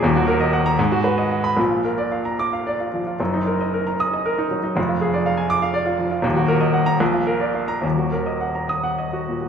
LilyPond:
\new Staff \with { instrumentName = "Grand piano" } { \time 6/8 \key ees \minor \tempo 4. = 75 << { r4 r16 bes''16 r4 r16 ces'''16 | r4. d'''8 r4 | r4. ees'''8 r4 | r4. d'''8 r4 |
r4 r16 bes''16 r4 r16 bes''16 | r4. ees'''8 r4 | } \\ { <ees,, ees,>16 ges'16 bes'16 ees''16 ges''8 aes,16 ges'16 ces''16 ees''16 ges''8 | <bes,, bes,>16 f'16 bes'16 d''16 f''16 bes''8 f''16 d''16 f'16 f16 f'16 | <ges,, ges,>16 ees'16 bes'16 ees''16 bes'16 bes''8 ees''16 bes'16 ees'16 ges16 ees'16 | <f,, f,>16 f'16 aes'16 d''16 f''16 aes''8 f''16 d''16 f'16 f16 f'16 |
<ees,, ees,>16 ges'16 bes'16 ees''16 ges''8 bes,,16 f'16 bes'16 d''16 f''8 | <ees,, ees,>16 ges'16 bes'16 ees''16 ges''16 bes''8 ges''16 ees''16 ges'16 bes,16 ges'16 | } >> }